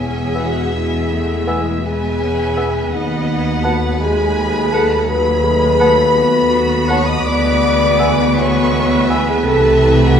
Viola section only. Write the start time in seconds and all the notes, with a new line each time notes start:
Already playing: C#4 G#4
0.72 B3
1.10 A3
1.47 G#3
1.84 B3 B4
2.21 C#4
2.58 B3
2.93 B3 B4
4.02 G#3
5.08 F#3 G#4
5.43 G#3
5.81 A3
6.18 B3 F#4
7.26 B3 B4
8.37 B4
9.47 A3